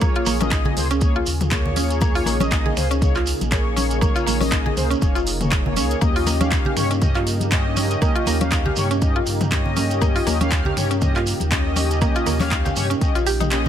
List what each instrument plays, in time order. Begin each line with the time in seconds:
Already playing: analog synth pad C#3 A#3 F4 G#4
0.01 synth arpeggio sound A#3, analog polysynth A#3 G#4 C#5, kick, closed hi-hat, high conga, shekere
0.16 synth arpeggio sound F4, closed hi-hat
0.26 sub bass A#1, synth arpeggio sound A#3, open hi-hat, high conga, shekere
0.40 analog polysynth A#3 G#4 D#5, synth arpeggio sound C#4, closed hi-hat, high conga, shekere
0.51 synth arpeggio sound D#4, finger snap, kick, clap, closed hi-hat, shekere
0.65 synth arpeggio sound G#4, low conga
0.77 sub bass C#2, analog polysynth A#3 G#4 C5, open hi-hat, mid tom, shekere
0.90 synth arpeggio sound C#4, closed hi-hat, shekere
1.01 analog polysynth A#3 G#4 C#5, kick, closed hi-hat, shekere
1.16 synth arpeggio sound F4
1.26 sub bass D#2, open hi-hat, shekere
1.41 closed hi-hat, mid tom, high conga, shekere
1.51 analog polysynth A#3 G#4 C#5, finger snap, kick, clap, closed hi-hat, shekere
1.66 low conga
1.76 synth arpeggio sound C#4, open hi-hat, high conga, shekere
1.90 closed hi-hat, shekere
2.01 synth arpeggio sound A#3, analog polysynth A#3 G#4 C#5, analog synth pad D#4, kick, closed hi-hat, high conga, shekere
2.15 synth arpeggio sound F4, open hi-hat
2.26 sub bass A#1, synth arpeggio sound A#3, open hi-hat, high conga, shekere
2.40 analog polysynth A#3 G#4 D#5, synth arpeggio sound C#4, closed hi-hat, high conga, shekere
2.51 synth arpeggio sound D#4, finger snap, kick, clap, closed hi-hat, shekere
2.66 synth arpeggio sound G#4, low conga
2.76 sub bass C#2, analog polysynth A#3 G#4 C5, finger snap, open hi-hat, mid tom, shekere
2.91 synth arpeggio sound C#4, closed hi-hat, shekere
3.02 analog polysynth A#3 G#4 C#5, kick, closed hi-hat, mid tom, shekere
3.16 synth arpeggio sound F4, clap
3.26 open hi-hat, shekere
3.41 sub bass A#1, closed hi-hat, high conga, shekere
3.52 analog polysynth A#3 G#4 C#5, finger snap, kick, clap, closed hi-hat, shekere
3.76 synth arpeggio sound C#4, open hi-hat, high conga, shekere
3.90 closed hi-hat, shekere
4.01 synth arpeggio sound A#3, analog polysynth A#3 G#4 C#5, kick, closed hi-hat, high conga, shekere
4.15 synth arpeggio sound F4, closed hi-hat, shekere
4.27 sub bass A#1, synth arpeggio sound A#3, open hi-hat, high conga, shekere
4.41 analog polysynth A#3 G#4 D#5, synth arpeggio sound C#4, open hi-hat, high conga, shekere
4.51 synth arpeggio sound D#4, finger snap, kick, clap, closed hi-hat, shekere
4.66 synth arpeggio sound G#4, low conga
4.77 sub bass C#2, analog polysynth A#3 G#4 C5, open hi-hat, mid tom, shekere
4.90 synth arpeggio sound C#4, closed hi-hat, shekere
5.02 sub bass F1, analog polysynth A#3 G#4 C#5, kick, closed hi-hat, shekere
5.15 synth arpeggio sound F4, closed hi-hat, shekere
5.27 open hi-hat, shekere
5.41 analog polysynth A#3 G#4 C#5, closed hi-hat, mid tom, high conga, shekere
5.52 finger snap, kick, clap, closed hi-hat, shekere
5.66 analog polysynth A#3 G#4 C#5, low conga
5.76 sub bass C#2, analog polysynth A#3 G#4 C#5, synth arpeggio sound C#4, open hi-hat, high conga, shekere
5.91 closed hi-hat, shekere
6.01 sub bass D#2, synth arpeggio sound A#3, analog polysynth C#4 G4 D#5, analog synth pad G4, kick, closed hi-hat, high conga, shekere
6.16 synth arpeggio sound F4, open hi-hat
6.26 synth arpeggio sound A#3, open hi-hat, high conga, shekere
6.41 synth arpeggio sound C#4, analog polysynth C#4 G4 F5, closed hi-hat, high conga, shekere
6.52 synth arpeggio sound D#4, finger snap, kick, clap, closed hi-hat, shekere
6.65 synth arpeggio sound G4, low conga
6.76 sub bass G2, analog polysynth C#4 G4 C#5, finger snap, open hi-hat, mid tom, shekere
6.91 synth arpeggio sound C#4, closed hi-hat, shekere
7.02 analog polysynth C#4 G4 D#5, kick, closed hi-hat, mid tom, shekere
7.15 synth arpeggio sound F4, clap
7.27 open hi-hat, shekere
7.40 closed hi-hat, high conga, shekere
7.52 analog polysynth C#4 G4 D#5, finger snap, kick, clap, closed hi-hat, shekere
7.76 synth arpeggio sound C#4, open hi-hat, high conga, shekere
7.91 closed hi-hat, shekere
8.01 synth arpeggio sound A#3, analog polysynth C#4 G4 D#5, kick, closed hi-hat, high conga, shekere
8.15 synth arpeggio sound F4, closed hi-hat
8.26 sub bass D#2, synth arpeggio sound A#3, open hi-hat, high conga, shekere
8.41 analog polysynth C#4 G4 F5, synth arpeggio sound C#4, closed hi-hat, high conga, shekere
8.51 synth arpeggio sound D#4, finger snap, kick, clap, closed hi-hat, shekere
8.66 synth arpeggio sound G4, low conga
8.76 sub bass G2, analog polysynth C#4 G4 C#5, open hi-hat, mid tom, shekere
8.91 synth arpeggio sound C#4, closed hi-hat, shekere
9.02 analog polysynth C#4 G4 D#5, kick, closed hi-hat, shekere
9.16 synth arpeggio sound F4
9.26 sub bass G2, open hi-hat, shekere
9.40 closed hi-hat, mid tom, high conga, shekere
9.51 analog polysynth C#4 G4 D#5, finger snap, kick, clap, closed hi-hat, shekere
9.66 low conga
9.77 synth arpeggio sound C#4, open hi-hat, high conga, shekere
9.90 closed hi-hat, shekere
10.01 synth arpeggio sound A#3, analog polysynth C#4 G4 D#5, kick, closed hi-hat, high conga, shekere
10.16 synth arpeggio sound F4, open hi-hat
10.27 sub bass D#2, synth arpeggio sound A#3, open hi-hat, high conga, shekere
10.41 synth arpeggio sound C#4, analog polysynth C#4 G4 F5, closed hi-hat, high conga, shekere
10.51 synth arpeggio sound D#4, finger snap, kick, clap, closed hi-hat, shekere
10.65 synth arpeggio sound G4, low conga
10.77 sub bass G2, analog polysynth C#4 G4 C#5, finger snap, open hi-hat, mid tom, shekere
10.91 synth arpeggio sound C#4, closed hi-hat, shekere
11.01 analog polysynth C#4 G4 D#5, kick, closed hi-hat, mid tom, shekere
11.16 synth arpeggio sound F4, clap
11.26 open hi-hat, shekere
11.40 sub bass D#2, closed hi-hat, high conga, shekere
11.52 analog polysynth C#4 G4 D#5, finger snap, kick, clap, closed hi-hat, shekere
11.76 synth arpeggio sound C#4, open hi-hat, high conga, shekere
11.91 closed hi-hat, shekere
12.01 synth arpeggio sound A#3, analog polysynth C#4 G4 D#5, kick, closed hi-hat, high conga, shekere
12.15 synth arpeggio sound F4, closed hi-hat, shekere
12.26 sub bass D#2, synth arpeggio sound A#3, open hi-hat, mid tom, high conga, shekere
12.40 analog polysynth C#4 G4 F5, synth arpeggio sound C#4, clap, open hi-hat, high conga, shekere
12.51 synth arpeggio sound D#4, finger snap, kick, clap, closed hi-hat, shekere
12.65 synth arpeggio sound G4, closed hi-hat, low conga, shekere
12.76 sub bass G2, analog polysynth C#4 G4 C#5, open hi-hat, mid tom, high conga, shekere
12.90 synth arpeggio sound C#4, closed hi-hat, shekere
13.01 analog polysynth C#4 G4 D#5, kick, closed hi-hat, shekere
13.15 sub bass A#1, synth arpeggio sound F4, closed hi-hat, shekere
13.26 synth arpeggio sound G4, open hi-hat, shekere
13.40 synth arpeggio sound D#4, closed hi-hat, mid tom, high conga, shekere
13.51 analog polysynth C#4 G4 D#5, finger snap, clap, closed hi-hat, shekere